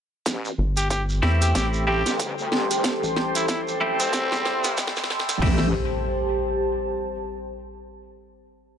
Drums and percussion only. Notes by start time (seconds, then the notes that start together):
0.26 kick, snare, closed hi-hat, shekere
0.45 shekere
0.77 closed hi-hat, shekere
0.90 kick, closed hi-hat, shekere
1.09 shekere
1.23 cross-stick, snare
1.42 cross-stick, closed hi-hat, shekere
1.55 kick, snare, closed hi-hat, shekere
1.73 shekere
2.06 snare, closed hi-hat, shekere
2.19 kick, closed hi-hat, shekere
2.39 shekere
2.52 snare
2.71 cross-stick, closed hi-hat, shekere
2.84 kick, snare, closed hi-hat, shekere
3.04 shekere
3.16 snare
3.35 closed hi-hat, shekere
3.48 kick, snare, closed hi-hat, shekere
3.68 shekere
4.00 closed hi-hat, shekere
4.13 kick, snare, closed hi-hat, shekere
4.32 snare, shekere
4.45 snare
4.64 snare, closed hi-hat, shekere
4.77 kick, snare, closed hi-hat, shekere
4.87 snare
4.96 snare, shekere
5.04 snare
5.10 snare
5.20 snare
5.29 snare, closed hi-hat, shekere
5.36 snare
5.42 kick, snare, crash
5.58 snare